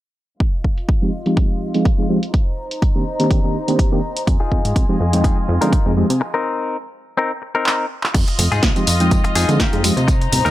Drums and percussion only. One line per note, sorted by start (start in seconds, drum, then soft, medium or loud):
0.40 kick loud
0.40 closed hi-hat medium
0.64 kick medium
0.78 closed hi-hat medium
0.89 kick loud
0.89 closed hi-hat medium
1.26 closed hi-hat medium
1.37 kick loud
1.37 closed hi-hat medium
1.74 closed hi-hat soft
1.85 kick loud
1.85 closed hi-hat medium
2.23 closed hi-hat medium
2.34 kick loud
2.34 closed hi-hat medium
2.71 closed hi-hat soft
2.82 kick loud
2.82 closed hi-hat medium
3.20 closed hi-hat medium
3.31 kick loud
3.31 closed hi-hat medium
3.68 closed hi-hat soft
3.79 kick loud
3.79 closed hi-hat medium
4.17 closed hi-hat soft
4.27 kick loud
4.27 closed hi-hat medium
4.52 kick medium
4.65 closed hi-hat soft
4.76 kick loud
4.76 closed hi-hat medium
5.13 closed hi-hat soft
5.24 kick loud
5.24 closed hi-hat medium
5.62 closed hi-hat soft
5.73 kick loud
5.73 closed hi-hat medium
6.10 closed hi-hat soft
7.66 clap loud
8.03 clap medium
8.15 kick loud
8.15 closed hi-hat medium
8.15 tambourine soft
8.15 crash medium
8.28 closed hi-hat soft
8.39 open hi-hat loud
8.39 tambourine medium
8.39 high conga medium
8.39 shaker medium
8.52 closed hi-hat soft
8.52 tambourine soft
8.52 high conga medium
8.52 shaker soft
8.63 kick loud
8.63 snare loud
8.63 closed hi-hat medium
8.63 tambourine soft
8.76 closed hi-hat soft
8.76 tambourine soft
8.87 open hi-hat loud
8.87 tambourine medium
9.00 closed hi-hat soft
9.00 tambourine soft
9.11 kick loud
9.11 closed hi-hat medium
9.11 tambourine soft
9.11 high conga medium
9.11 low conga medium
9.11 shaker medium
9.24 closed hi-hat soft
9.35 open hi-hat loud
9.35 tambourine medium
9.49 closed hi-hat soft
9.49 tambourine soft
9.60 kick loud
9.60 snare loud
9.60 closed hi-hat medium
9.60 tambourine soft
9.73 closed hi-hat soft
9.84 finger snap medium
9.84 open hi-hat loud
9.84 tambourine medium
9.97 closed hi-hat soft
9.97 tambourine soft
9.97 high conga medium
9.97 shaker soft
10.08 kick loud
10.08 closed hi-hat medium
10.08 tambourine soft
10.21 closed hi-hat soft
10.32 open hi-hat loud
10.32 tambourine medium
10.32 high conga medium
10.32 low conga medium
10.32 shaker medium
10.45 closed hi-hat soft
10.45 tambourine soft
10.45 high conga medium
10.45 shaker soft